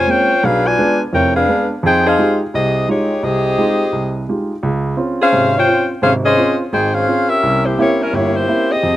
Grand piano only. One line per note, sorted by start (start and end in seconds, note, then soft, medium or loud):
0.07 0.31 G#3 soft
0.07 0.31 A#3 soft
0.07 0.31 C4 soft
0.07 0.31 C#4 soft
0.43 0.73 B1 medium
0.79 1.01 G#3 medium
0.79 1.01 B3 medium
0.79 1.01 D4 medium
1.13 1.43 F1 medium
1.13 1.42 F2 medium
1.48 1.71 G#3 soft
1.48 1.71 B3 medium
1.48 1.72 D4 medium
1.83 2.13 F2 medium
1.83 2.13 F3 medium
2.18 2.41 G#3 medium
2.18 2.41 D#4 soft
2.18 2.41 F4 medium
2.18 2.41 G4 medium
2.54 2.83 C2 medium
2.88 3.11 G#3 medium
2.88 3.11 D#4 soft
2.88 3.11 F4 soft
2.88 3.12 G4 medium
3.23 3.52 C2 medium
3.58 3.81 G#3 medium
3.58 3.81 D#4 medium
3.58 3.81 F4 soft
3.58 3.81 G4 medium
3.92 4.22 C2 medium
4.29 4.51 G#3 soft
4.29 4.52 D#4 soft
4.29 4.52 F4 soft
4.29 4.52 G4 soft
4.63 4.92 C#2 medium
4.97 5.20 C4 medium
4.97 5.21 C#4 medium
4.97 5.21 F4 medium
5.32 5.62 G#1 medium
5.32 5.62 C3 medium
5.67 5.90 C4 soft
5.67 5.90 C#4 soft
5.67 5.91 F4 medium
6.02 6.32 G#1 medium
6.02 6.32 C3 medium
6.37 6.61 C4 medium
6.37 6.60 C#4 soft
6.37 6.61 F4 medium
6.73 7.02 G#1 medium
7.07 7.31 C4 medium
7.07 7.31 C#4 soft
7.07 7.31 F4 soft
7.43 7.72 C2 medium
7.78 8.01 A#3 medium
7.78 8.01 C4 medium
7.78 8.01 C#4 medium
7.78 8.01 E4 medium
8.13 8.42 G1 medium
8.47 8.71 A#3 soft
8.47 8.71 C4 soft
8.47 8.71 C#4 soft
8.47 8.71 E4 medium
8.83 8.97 F2 medium